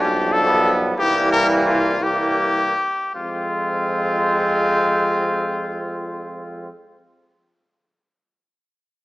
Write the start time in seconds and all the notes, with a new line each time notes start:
0.00 B1 F3 G3 D4 G4
0.33 A4
0.47 B3
0.97 C2 E3 G3 A#3 G4
1.32 A#4
1.66 F4
2.01 E3 G3 A#3 G4
3.15 F2 F3 G#3 C4 F4